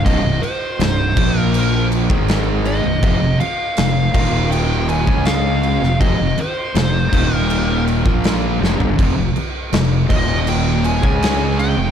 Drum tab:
CC |x-x-x-x-x-x-x-x-|x-x-x-x-x-x-x-x-|x-x-x-x-x-x-x---|x-x-x-x-x-x-x-x-|
SD |----o-------o---|----o-------o--o|----o-------o-o-|----o-------o---|
FT |----------------|----------------|---------------o|----------------|
BD |o-----o----o----|o-----o----o----|o-----o----o----|o-----o----o----|